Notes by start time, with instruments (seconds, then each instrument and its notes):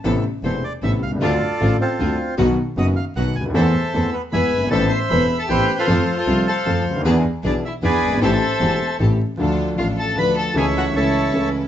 0.04 grand piano A1 A2 C3 A3 B3 E4, double bass A1, string section B3 C4 A4
0.43 double bass E1, grand piano E1 E2 C3 A3 B3 E4, string section B3 C4 A4, bandoneon C5
0.64 bandoneon D5
0.82 double bass A1, grand piano A1 A2 C3 A3 B3 E4, string section B3 C4 A4, bandoneon E5
1.02 double bass C2, bandoneon F5
1.07 grand piano B1
1.12 grand piano C2
1.16 grand piano C#2
1.21 double bass D2, grand piano D2 D3 A3 C4 F4, string section C4 D4 F4, bandoneon F4 A4 D5
1.60 grand piano A1 A2 D3 A3 C4 F4, double bass A1, string section C4 D4 F4
1.81 bandoneon C4 F4 A4
1.99 double bass D2, grand piano D2 D3 A3 C4 F4, string section C4 D4 F4
2.37 grand piano B1 B2 D#3 F#3 B3 F#4, double bass B1, string section B3 D#4 F#4
2.77 double bass F#1, grand piano F#1 F#2 D#3 F#3 B3 F#4, string section B3 D#4 F#4, bandoneon D#5
2.96 bandoneon F5
3.16 double bass B1, grand piano B1 B2 D#3 F#3 B3 F#4, string section B3 D#4 F#4, bandoneon F#5
3.36 double bass D2, bandoneon G#5
3.41 grand piano C#2
3.46 grand piano D2
3.50 grand piano D#2
3.54 grand piano E2 E3 A3 C4 A4, double bass E2, string section C4 E4 A4, bandoneon A4 C5 E5
3.94 grand piano E2 E3 A3 C4 A4, double bass E2, string section C4 E4 A4
4.12 violin B3, bandoneon B4
4.31 grand piano E2 E3 G#3 B3 G#4, double bass E2, string section B3 E4 G#4, violin B4, bandoneon E5 G#5 B5
4.52 double bass G1
4.57 grand piano F#1
4.62 grand piano G1
4.66 grand piano G#1, violin A4, bandoneon A5
4.71 grand piano A1 A2 E3 B3 C4 A4, double bass A1, string section B3 C4 A4, bandoneon C5 E5
4.89 violin C5, bandoneon C6
5.09 double bass E1, grand piano E1 E2 E3 B3 C4 A4, string section B3 C4 A4, violin B4, bandoneon E5 B5
5.39 violin A4, bandoneon A5
5.48 double bass A1, grand piano A1 A2 E3 B3 C4 A4, string section B3 C4 A4, violin G4, bandoneon B4 C5 G5
5.78 violin F4, bandoneon A4 C5 F5
5.87 grand piano F2 F3 A3 C4 A4, double bass F2, string section C4 F4 A4
6.17 violin F4, bandoneon A4 C5 F5
6.27 double bass C2, grand piano C2 C3 F3 A3 C4 A4, string section C4 F4 A4
6.47 violin A4, bandoneon C5 F5 A5
6.66 double bass F2, grand piano F2 F3 A3 C4 A4, string section C4 F4 A4
6.85 double bass D2
6.91 grand piano C#2
6.96 grand piano D2
7.00 grand piano D#2
7.05 double bass E2, grand piano E2 E3 B3 D4 G#4, string section D4 E4 G#4
7.43 double bass B1, grand piano B1 B2 E3 B3 D4 G#4, string section D4 E4 G#4, violin D4, bandoneon D5
7.65 violin E4, bandoneon E5
7.82 double bass E2, grand piano E2 E3 B3 D4 G#4, string section D4 E4 G#4, violin G#4, bandoneon B4 D5 G#5
8.02 double bass G1
8.07 grand piano F#1
8.12 grand piano G1
8.17 grand piano G#1
8.21 grand piano A1 A2 E3 A3 C4 G4, double bass A1, string section C4 G4 A4, violin A4, bandoneon C5 E5 A5
8.60 grand piano E1 E2 E3 A3 C4 G4, double bass E1, string section C4 G4 A4
8.99 double bass A1, grand piano A1 A2 E3 A3 C4 G4, string section C4 G4 A4
9.37 grand piano D2 D3 F3 A3 D4 A4, double bass D2, string section D4 F4 A4
9.76 double bass A1, grand piano A1 A2 F3 A3 D4 A4, string section D4 F4 A4, violin F4, bandoneon F5
9.98 violin A4, bandoneon A5
10.15 grand piano D2 D3 F3 A3 D4, double bass D2, string section D4 F4 A4, violin B4, bandoneon B5
10.19 grand piano A4
10.37 violin A4, bandoneon A5
10.54 grand piano C#2 C#3 E3 A3 C#4, double bass C#2, string section C#4 E4 A4, violin G#4, bandoneon C#5 E5 G#5
10.58 grand piano A4
10.77 violin F#4, bandoneon F#5
10.93 double bass C#2, grand piano C#2 C#3 E3 A3 C#4 A4, string section C#4 E4 A4, violin E4, bandoneon A4 C#5
10.97 bandoneon E5
11.31 double bass C#2, grand piano C#2 C#3 E3 A3 C#4 A4, string section C#4 E4 A4